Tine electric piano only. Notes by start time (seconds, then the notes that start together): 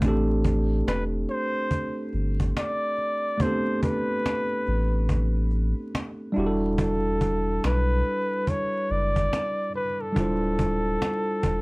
0.01 A3 C4 D4
0.06 G4 A4
3.38 A3 B3
3.42 D4 G4 A4
3.46 C4
6.32 G3 D4 E4
6.38 F#4 G4
6.46 A4
10.12 G3 D4 E4
10.18 F4 C5